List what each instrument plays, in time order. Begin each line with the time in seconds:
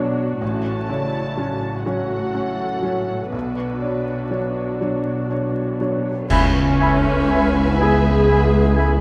Already playing: cello section B2, harp B2 F#3 B3 C#4 D4 C#5, grand piano F#3 D4 C#5, viola section D4 F#4
0.18 harp C#5
0.41 grand piano A1, harp A2, cello section A2, viola section C#4, violin section A5
0.66 harp C#5
0.88 grand piano C#3 C#5, viola section E4, harp D5
1.13 harp C#5
1.37 grand piano F#3 C#4 C#5, viola section F#4
1.61 harp C#5
1.86 grand piano F#3 C#4 C#5, harp F#3, viola section A4, violin section F#5
2.10 harp C#5
2.34 harp A3, grand piano C#4 C#5
2.58 harp B3
2.83 grand piano F#3 C#4 C#5, harp A3
3.08 harp C#5
3.32 grand piano B1, harp B2, cello section B2, viola section D4 F#4, violin section B4
3.57 harp C#5
3.82 grand piano D4 C#5, harp D5
4.08 harp C#5
4.31 grand piano F#3 D4 C#5, harp D4
4.57 harp C#5
4.81 grand piano F#3 D4 C#5, harp F#3
5.07 harp C#5
5.30 harp B3, grand piano D4 C#5
5.56 harp C#4
5.80 grand piano F#3 D4 C#5, harp B3
6.05 harp C#5
6.30 double bass section C#2, grand piano C#2, cello section C#2, harp C#3, french horn section B3 E4, viola section C#4, alto flute C#4, violin section B4 E5 G#5, clarinet E5, oboe G#5, flute section B5, concert bass drum, crash
6.55 harp G#4
6.80 harp A4, clarinet E5, oboe G#5, flute section B5
7.06 harp G#4
7.31 harp E4, clarinet E5, oboe G#5, flute section B5
7.56 harp G#4
7.80 grand piano B3 E4 G#4, harp B3, viola section G#4, alto flute G#4, clarinet E5, oboe G#5, flute section B5
8.06 harp G#4
8.29 harp G#3, clarinet E5, oboe G#5, flute section B5
8.54 harp A3
8.76 harp G#3, clarinet E5, oboe G#5, flute section B5